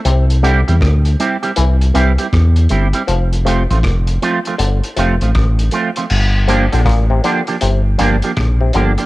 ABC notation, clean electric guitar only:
X:1
M:4/4
L:1/16
Q:"Swing 16ths" 1/4=79
K:Gdor
V:1 name="Clean electric guitar"
z2 [G,CEG] [G,CEG] z2 [G,CEG] [G,CEG] z2 [G,CEG] [G,CEG] z2 [G,CEG] [G,CEG] | z2 [F,A,CF] [F,A,CF] z2 [F,A,CF] [F,A,CF] z2 [F,A,CF] [F,A,CF] z2 [F,A,CF] [F,A,CF] | z2 [F,B,DG] [F,B,DG] z2 [F,B,DG] [F,B,DG] z2 [F,B,DG] [F,B,DG] z2 [F,B,DG] [F,B,DG] |]